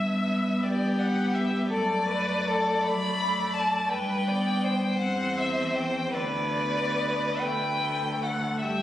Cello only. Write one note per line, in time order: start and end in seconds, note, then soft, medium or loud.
0.00 0.51 G2 soft
0.64 1.57 G2 soft
1.69 2.71 F#2 soft
2.84 3.77 F#2 soft
3.91 4.88 G2 medium
5.01 6.01 E2 soft
6.15 7.28 D2 soft
7.43 8.49 D2 soft
8.62 8.82 G2 soft